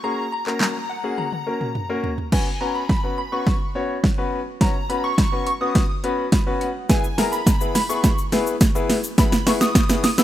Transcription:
0.04 grand piano A#3 C#4 F#4 G#4, synth bell A#5
0.32 synth bell A#5
0.46 grand piano A#3 C#4 F#4 A#4, clap
0.60 snare, clap
0.90 synth bell F#5
1.04 grand piano A#3 C#4 F#4 G#4
1.18 synth bell A#5, high tom
1.32 high tom
1.46 grand piano A#3 C#4 F#4 A#4
1.61 mid tom
1.75 mid tom
1.89 grand piano A#3 C#4 F#4 A#4
2.04 floor tom
2.18 floor tom
2.32 grand piano B3 C#4 F#4 B4, synth bell G#5, kick, snare, crash
2.61 grand piano B3 C#4 F#4 B4, synth bell A#5
2.75 synth bell B5
2.89 kick, snare
3.04 grand piano B3 C#4 F#4 B4
3.18 synth bell B5
3.32 grand piano B3 C#4 F#4 B4, synth bell C#6
3.47 kick, snare
3.75 grand piano B3 C#4 F#4 C#5
4.04 kick, snare
4.18 grand piano B3 C#4 F#4 B4
4.61 grand piano B3 C#4 F#4 C#5, synth bell A#5, kick, snare, closed hi-hat
4.89 grand piano B3 C#4 F#4 B4, synth bell B5, closed hi-hat
5.04 synth bell C#6
5.18 kick, snare, closed hi-hat
5.32 grand piano B3 C#4 F#4 B4
5.47 synth bell C#6, closed hi-hat
5.61 grand piano B3 C#4 F#4 B4, synth bell D#6
5.75 kick, snare, closed hi-hat
6.04 grand piano B3 C#4 F#4 B4, closed hi-hat
6.32 grand piano B5, kick, snare, closed hi-hat
6.46 grand piano B3 C#4 F#4 B4
6.61 grand piano F#5, closed hi-hat
6.89 grand piano B3 E4 G#4 B4, synth bell G#5, kick, snare, closed hi-hat, shaker
7.04 shaker
7.18 grand piano B3 E4 G#4 A#4, synth bell A#5, snare, open hi-hat, shaker
7.32 synth bell B5, shaker
7.47 kick, snare, closed hi-hat, shaker
7.61 grand piano B3 E4 G#4 B4, shaker
7.75 synth bell B5, snare, open hi-hat, shaker
7.89 grand piano B3 E4 G#4 B4, synth bell C#6, shaker
8.04 kick, snare, closed hi-hat, shaker
8.18 shaker
8.32 grand piano B3 E4 G#4 B4, snare, open hi-hat, shaker
8.47 shaker
8.61 kick, snare, closed hi-hat, shaker
8.75 grand piano B3 E4 G#4 B4, shaker
8.90 snare, open hi-hat, shaker
9.04 shaker
9.18 grand piano B3 E4 G#4 B4, synth bell B5, kick, snare, closed hi-hat, shaker
9.32 snare, shaker
9.46 grand piano B3 E4 G#4 B4, synth bell C#6, snare, open hi-hat, shaker
9.61 synth bell D#6, snare, shaker
9.75 kick, snare, closed hi-hat, shaker
9.89 grand piano B3 E4 G#4 B4, snare, shaker
10.04 synth bell D#6, snare, open hi-hat, shaker
10.18 grand piano B3 E4 G#4 B4, synth bell E6, snare, shaker

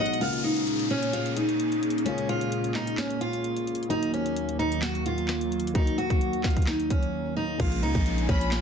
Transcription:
Already playing: grand piano B2 F#3, analog synth pad G#3 D#4 F#4 B4
0.00 grand piano G#3 D#4, steel-string acoustic guitar D#5, violin section F#5
0.06 closed hi-hat
0.13 closed hi-hat
0.19 analog synth pad A#2 A#3 C#4 G#4, grand piano C#3 G#3 A#3, steel-string acoustic guitar F4, closed hi-hat, downlifter
0.23 grand piano F4
0.33 closed hi-hat
0.44 steel-string acoustic guitar D#4, closed hi-hat
0.56 closed hi-hat
0.67 closed hi-hat
0.79 closed hi-hat
0.90 steel-string acoustic guitar C#4, closed hi-hat
1.03 closed hi-hat
1.13 steel-string acoustic guitar F4, closed hi-hat
1.26 closed hi-hat
1.37 steel-string acoustic guitar D#4, closed hi-hat
1.49 closed hi-hat
1.60 closed hi-hat
1.72 closed hi-hat
1.83 closed hi-hat
1.90 closed hi-hat
1.98 closed hi-hat
2.04 grand piano C#3 G#3 A#3, steel-string acoustic guitar C#4, closed hi-hat
2.08 grand piano F4
2.18 closed hi-hat
2.29 steel-string acoustic guitar F4, closed hi-hat
2.41 closed hi-hat
2.52 closed hi-hat
2.64 closed hi-hat
2.74 steel-string acoustic guitar D#4, snare, clap, closed hi-hat
2.87 closed hi-hat
2.98 steel-string acoustic guitar C#4, snare, clap, closed hi-hat
3.10 closed hi-hat
3.21 steel-string acoustic guitar F4, closed hi-hat
3.33 closed hi-hat
3.44 closed hi-hat
3.57 closed hi-hat
3.67 closed hi-hat
3.75 closed hi-hat
3.83 closed hi-hat
3.89 analog synth pad D#2 D#3 F#3, grand piano D#3 F#3 A#3, steel-string acoustic guitar D#4, closed hi-hat
3.93 grand piano D#4
4.03 closed hi-hat
4.14 steel-string acoustic guitar C#4, closed hi-hat
4.26 closed hi-hat
4.37 closed hi-hat
4.49 closed hi-hat
4.59 steel-string acoustic guitar D#4, closed hi-hat
4.72 closed hi-hat
4.82 steel-string acoustic guitar F#4, snare, clap, closed hi-hat
4.95 closed hi-hat
5.06 steel-string acoustic guitar F4, closed hi-hat
5.18 closed hi-hat
5.28 snare, clap, closed hi-hat
5.41 closed hi-hat
5.52 closed hi-hat
5.60 closed hi-hat
5.67 closed hi-hat
5.74 grand piano D#3 F#3 A#3, steel-string acoustic guitar D#4, kick, closed hi-hat
5.78 grand piano F#4
5.87 closed hi-hat
5.98 steel-string acoustic guitar F#4, closed hi-hat
6.10 kick, closed hi-hat
6.21 closed hi-hat
6.33 closed hi-hat
6.44 steel-string acoustic guitar F4, kick, snare, clap, closed hi-hat
6.50 closed hi-hat
6.57 kick, closed hi-hat
6.62 closed hi-hat
6.67 steel-string acoustic guitar D#4, snare, clap, closed hi-hat
6.80 closed hi-hat
6.90 steel-string acoustic guitar C#4, kick, closed hi-hat
7.03 closed hi-hat
7.37 steel-string acoustic guitar D#4
7.58 808-style bass A#1, grand piano C#3 G#3 A#3, analog synth pad A#3 F4 C#5 G#5, steel-string acoustic guitar F4, kick, closed hi-hat, downlifter
7.62 grand piano F4
7.72 closed hi-hat
7.83 808-style bass C#2, steel-string acoustic guitar D#4, closed hi-hat
7.95 808-style bass A#1, kick, closed hi-hat
8.06 closed hi-hat
8.18 closed hi-hat
8.29 808-style bass A#1, steel-string acoustic guitar C#4, violin section B5, kick, closed hi-hat
8.41 closed hi-hat
8.51 steel-string acoustic guitar F4, snare, clap, closed hi-hat

